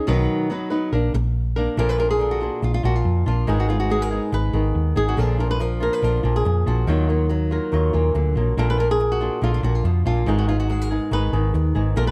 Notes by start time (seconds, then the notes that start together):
0.07 B1 B2 D#3 F#3 B3 D#4 B4
0.50 F#3 B3 D#4 B4
0.70 F#3 B3 D#4 B4
0.92 A#1 A#3 D4 A#4
1.14 A#1, muted nylon-string guitar stroke
1.56 A#3 D4 A#4
1.77 A#1 A#2 D3 F3 A#3 D4 F4 A#4
1.89 B4
1.98 A#3 D4 F4 A#4
2.11 G#4
2.19 D3 A#3 D4 F4
2.31 F#4
2.41 A#3 D4 F4
2.62 A#1 F4, muted nylon-string guitar stroke
2.74 F4
2.83 A#1 A#2 A#3 D4 F4 F#4
2.96 F4
3.05 F2
3.26 A#1 A#3 D4 F4
3.47 G#1 G#2 D#3 G#3 B3 D#4 G#4
3.60 F#4
3.69 B3 D#4 F4 G#4
3.80 F#4
3.89 G#3 B3 D#4 G#4
4.02 A#4
4.11 B3 D#4 G#4
4.32 G#1 B4, muted nylon-string guitar stroke
4.53 G#1 D#3 B3 D#4 G#4
4.75 D#2
4.96 G#1 G#2 B3 D#4 G#4
5.09 F#4
5.17 A#1 A#2 D3 F3 A#3 D4 F4 G#4
5.38 A#3 D4 F4 A#4
5.51 B4
5.59 F3 A#4, muted nylon-string guitar stroke
5.80 A#3 D4 F4 A#4
5.93 B4
6.02 A#1 D3 A#3 D4 F4 A#4
6.23 A#1 A#2 A#3 D4 F4
6.36 G#4
6.45 F2, muted nylon-string guitar stroke
6.66 A#1 A#3 D4 F4 F#4
6.87 D#2 D#3 F#3 A#3 F4
7.09 F#3 A#3 F4
7.29 F#3, muted nylon-string guitar stroke
7.51 F#3 A#3 F4 A#4
7.72 D#2 D#3 F#3 A#3 F4
7.93 D#2 A#2 F#3 A#3 F4
8.15 D2 D3, muted nylon-string guitar stroke
8.35 A#1 B2 F#3 A#3 F4
8.57 A#1 A#2 D3 A#3 D4 F4 A#4
8.70 B4
8.78 A#3 D4 F4 A#4
8.91 G#4
9.00 muted nylon-string guitar stroke
9.12 F#4
9.21 A#3 D4 F4
9.42 A#1 D3 A#3 D4 F4
9.54 F4
9.63 A#1 A#2 A#3 D4 F4 F#4
9.75 F4
9.84 F2 B2, muted nylon-string guitar stroke
10.05 A#1 A#2 A#3 D4 F4
10.26 G#1 G#2 D#3 G#3 B3 D#4 G#4
10.39 F#4
10.48 B3 D#4 F4 G#4
10.60 F#4
10.69 G#3 G#4, muted nylon-string guitar stroke
10.82 A#4
10.90 B3 D#4 G#4
11.11 G#1 D#3 G#3 B3 D#4 G#4 B4
11.32 G#1 D#3 B3 D#4 G#4
11.54 D#2, muted nylon-string guitar stroke
11.75 G#1 G#2 B3 D#4 G#4
11.96 A#1 A#2 D3 A#3 D4 F4 A#4
12.07 B4